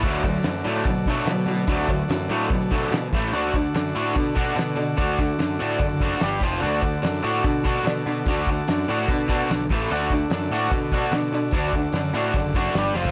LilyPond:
<<
  \new Staff \with { instrumentName = "Transistor combo organ" } { \time 4/4 \key d \major \tempo 4 = 146 <fis' a' d''>1~ | <fis' a' d''>2.~ <fis' a' d''>8 r8 | <fis' a' d''>1~ | <fis' a' d''>2. r4 |
<fis' a' d''>1~ | <fis' a' d''>2.~ <fis' a' d''>8 r8 | <fis' a' d''>1~ | <fis' a' d''>2. r4 | }
  \new Staff \with { instrumentName = "Overdriven electric guitar" } { \clef bass \time 4/4 \key d \major <d fis a>8 <d fis>8 <d fis>8 <d fis a>8 <d fis>8 <d fis a>8 <d fis>8 <d fis>8 | <d fis a>8 <d fis>8 <d fis>8 <d fis a>8 <d fis>8 <d fis a>8 <d fis>8 <a, e a>8 | <d d' fis'>8 <d d'>8 <d d'>8 <d d' fis'>8 <d d'>8 <d d' fis'>8 <d d'>8 <d d'>8 | <d d' fis'>8 <d d'>8 <d d'>8 <d d' fis'>8 <d d'>8 <d d' fis'>8 <g d' g'>8 <f c' f'>8 |
<d d' fis'>8 <d d'>8 <d d'>8 <d d' fis'>8 <d d'>8 <d d' fis'>8 <d d'>8 <d d'>8 | <d d' fis'>8 <d d'>8 <d d'>8 <d d' fis'>8 <d d'>8 <d d' fis'>8 <d d'>8 <a, e a>8 | <d d' fis'>8 <d d'>8 <d d'>8 <d d' fis'>8 <d d'>8 <d d' fis'>8 <d d'>8 <d d'>8 | <d d' fis'>8 <d d'>8 <d d'>8 <d d' fis'>8 <d d'>8 <d d' fis'>8 <g d' g'>8 <f c' f'>8 | }
  \new Staff \with { instrumentName = "Picked electric bass" } { \clef bass \time 4/4 \key d \major d,4 fis,8 a,8 b,4 b,8 b,8 | d,4 fis,8 a,8 b,4 b,8 a,,8 | d,4 fis,8 a,8 b,4 b,8 b,8 | d,4 fis,8 a,8 fis,,4 g,,8 f,,8 |
d,4 fis,8 a,8 b,4 b,8 b,8 | d,4 fis,8 a,8 b,4 b,,8 a,,8 | d,4 fis,8 a,8 b,4 b,8 b,8 | d,4 fis,8 a,8 fis,,4 g,,8 f,,8 | }
  \new DrumStaff \with { instrumentName = "Drums" } \drummode { \time 4/4 <cymc bd>8 bd8 <hho sn>4 <hho bd>8 bd8 <hho sn>4 | <hho bd>8 bd8 <hho sn>4 <hho bd>8 bd8 <hho sn>8 bd8 | hho8 bd8 <hho sn>4 <hho bd>8 bd8 <hho sn>4 | <hho bd>8 bd8 <hho sn>4 <hho bd>8 bd8 <hho sn>8 bd8 |
hho8 bd8 <hho sn>4 <hho bd>8 bd8 <hho sn>4 | <hho bd>8 bd8 <hho sn>4 <hho bd>8 bd8 <hho sn>8 bd8 | hho8 bd8 <hho sn>4 <hho bd>8 bd8 <hho sn>4 | <hho bd>8 bd8 <hho sn>4 <hho bd>8 bd8 <hho sn>8 sn16 tomfh16 | }
>>